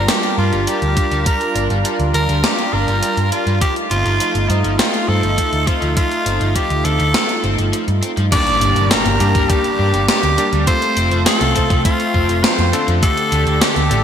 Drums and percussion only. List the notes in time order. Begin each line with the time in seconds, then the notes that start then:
0.08 snare, closed hi-hat
0.23 closed hi-hat
0.53 closed hi-hat
0.67 closed hi-hat
0.82 closed hi-hat
0.97 kick, closed hi-hat
1.11 closed hi-hat
1.26 kick, closed hi-hat
1.41 closed hi-hat
1.56 closed hi-hat
1.70 closed hi-hat
1.85 closed hi-hat
2.00 closed hi-hat
2.14 closed hi-hat
2.29 closed hi-hat
2.44 snare, closed hi-hat
2.59 closed hi-hat
2.88 closed hi-hat
3.03 closed hi-hat
3.17 closed hi-hat
3.32 closed hi-hat
3.47 closed hi-hat
3.61 kick, closed hi-hat
3.76 closed hi-hat
3.91 closed hi-hat
4.06 closed hi-hat
4.20 closed hi-hat
4.35 closed hi-hat
4.50 closed hi-hat
4.64 closed hi-hat
4.79 snare, closed hi-hat
4.94 closed hi-hat
5.23 closed hi-hat
5.38 kick, closed hi-hat
5.53 closed hi-hat
5.67 kick, closed hi-hat
5.82 closed hi-hat
5.97 kick, closed hi-hat
6.11 closed hi-hat
6.26 closed hi-hat
6.41 closed hi-hat
6.56 kick, closed hi-hat
6.70 closed hi-hat
6.85 closed hi-hat
7.00 closed hi-hat
7.14 snare, closed hi-hat
7.29 closed hi-hat
7.44 closed hi-hat
7.58 closed hi-hat
7.73 closed hi-hat
7.88 closed hi-hat
8.03 closed hi-hat
8.17 closed hi-hat
8.32 kick, closed hi-hat, crash
8.47 closed hi-hat
8.61 closed hi-hat
8.76 closed hi-hat
8.91 snare, closed hi-hat
9.06 closed hi-hat
9.20 closed hi-hat
9.35 kick, closed hi-hat
9.50 kick, closed hi-hat
9.64 closed hi-hat
9.94 closed hi-hat
10.08 snare, closed hi-hat
10.23 closed hi-hat
10.38 closed hi-hat
10.53 closed hi-hat
10.67 kick, closed hi-hat
10.82 closed hi-hat
10.97 closed hi-hat
11.11 closed hi-hat
11.26 snare, closed hi-hat
11.41 closed hi-hat
11.56 kick, closed hi-hat
11.70 kick, closed hi-hat
11.85 kick, closed hi-hat
12.00 closed hi-hat
12.14 kick
12.29 closed hi-hat
12.44 snare, closed hi-hat
12.59 closed hi-hat
12.73 closed hi-hat
12.88 closed hi-hat
13.03 kick, closed hi-hat
13.17 closed hi-hat
13.32 closed hi-hat
13.47 closed hi-hat
13.62 snare, closed hi-hat
13.76 closed hi-hat
13.91 closed hi-hat